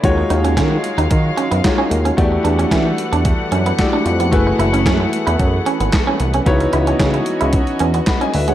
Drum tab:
HH |x-xxx-xxx-xxx-xx|x-xxx-xxx-xxx-xx|x-xxx-xxx-xxx-xx|xxxxxxxxxxxxxxox|
CP |----x-------x---|----x-------x---|----x-------x---|----x-------x---|
SD |----o-------o---|----o-------o---|----o-------o---|----o-------o---|
BD |o---o---o---o---|o---o---o---o---|o---o---o---o---|o---o---o---o---|